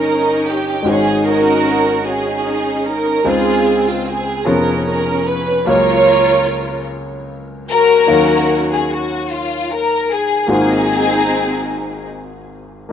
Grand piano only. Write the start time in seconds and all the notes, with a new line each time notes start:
Already playing: G1 G2 A#3 D#4 F4 C#5 G5
0.83 G#1 G#2 G#3 C#4 D#4 F#4 C5
0.93 C#5
3.24 C#2 C#3 G#3 C4 D#4 F4 C5
4.45 F1 F2 B3 C#4 F4 G#4 C#5
5.66 C#2 C#3 F#3 A#3 C#4 C#5 F5
8.06 D#2 D#3 F#3 A#3 D#4 C#5 F5
10.47 G#1 G#2 A#3 F4 F#4 G#4 C5
12.89 A#3